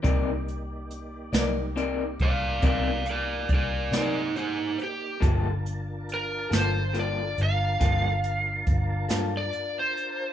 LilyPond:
<<
  \new Staff \with { instrumentName = "Lead electric guitar" } { \time 12/8 \key g \minor \tempo 4. = 46 r2 r8 <d'' f''>8 <d'' f''>8 <bes' d''>8 <bes' d''>8 <ees' c''>8 <ees' c''>8 g'8 | r4 bes'8 c''8 d''8 f''2~ f''16 d''8 c''8. | }
  \new Staff \with { instrumentName = "Tonewheel organ" } { \time 12/8 \key g \minor <bes ees' g' d''>1. | <d' f' bes' a''>1. | }
  \new Staff \with { instrumentName = "Clean electric guitar" } { \time 12/8 \key g \minor <c' ees' bes' d''>8 r4 <ees' bes' d''>8 <c' ees' bes' d''>8 r8 <c' ees' bes' d''>8 r4 <ees' bes' d''>8 r4 | <g bes f' a'>8 r4 <bes f' a'>8 <g bes f' a'>8 r8 <g bes f' a'>8 r4 <bes f' a'>8 r4 | }
  \new Staff \with { instrumentName = "Fingered electric bass" } { \clef bass \time 12/8 \key g \minor c,4. c,4 c,8 c,4 c,8 c8 r4 | g,,4. g,,4 g,,8 g,,4 g,,8 g,8 r4 | }
  \new DrumStaff \with { instrumentName = "Drums" } \drummode { \time 12/8 <hh bd>8 hh8 hh8 <hh sn>8 hh8 <hh bd>8 <hh bd>8 hh8 <hh bd>8 <hh sn>8 hh8 hh8 | <hh bd>8 hh8 hh8 <hh sn>8 hh8 hh8 <hh bd>8 hh8 <hh bd>8 <hh sn>8 hh8 hh8 | }
>>